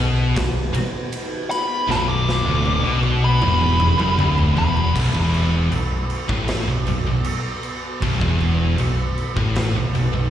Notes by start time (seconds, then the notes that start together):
Already playing: B1 B2 B3 F#4 B4
0.35 B0 B1, kick, snare, ride
0.74 muted distorted electric guitar stroke, muted fingered electric bass stroke, ride
1.12 ride
1.51 B5, snare, ride
1.88 B0 B1 B5, snare
2.09 D6
2.29 snare
2.45 D1 D2
2.65 high tom
2.83 B1 B2
3.03 high tom
3.24 B5
3.42 E1 E2, mid tom
3.61 mid tom
3.80 mid tom
3.99 F#1 F#2, mid tom
4.18 D1 D2, mid tom
4.38 floor tom
4.57 E1 E2 B5, floor tom
4.77 floor tom
4.94 B0 B1 B3 F#4 B4, kick, crash
5.13 E1 E2, kick
5.34 crash
5.72 B0 B1, crash
6.10 crash
6.29 A1 A2, kick
6.48 snare, crash
6.67 B0 B1
6.87 B0 B1, crash
7.04 B0 B1
7.24 crash
7.63 crash
8.02 B0 B1, kick, crash
8.21 E1 E2, kick
8.40 crash
8.78 B0 B1, crash
9.18 crash
9.36 A1 A2, kick
9.56 snare, crash
9.74 B0 B1
9.93 B0 B1, crash
10.12 B0 B1